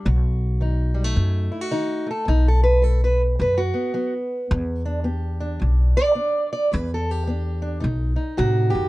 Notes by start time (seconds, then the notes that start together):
0.05 B1 B2 F#4
0.61 D#3 D#4
0.94 G3
1.04 A3
1.16 F#2
1.52 E4
1.61 F#4
1.71 D#3 D#4
2.06 A3
2.11 A4
2.25 B1 B2 D#4
2.48 A4
2.64 B4
2.82 F#3 A4
3.04 B4
3.39 F#2 B2 B4
3.58 F#4
3.74 B3
3.94 F#3 B3
4.51 E2
4.85 D4
5.04 B3 G4
5.40 D4
5.60 B1 E2
5.97 D5
6.15 B3 D4
6.53 D5
6.72 E2 B4
6.94 A4
7.11 G4
7.27 B3 D4
7.62 D4
7.80 B1 B2 D#4
8.16 D#4
8.37 A2 C3 F#4
8.70 D#3 G4
8.75 F#2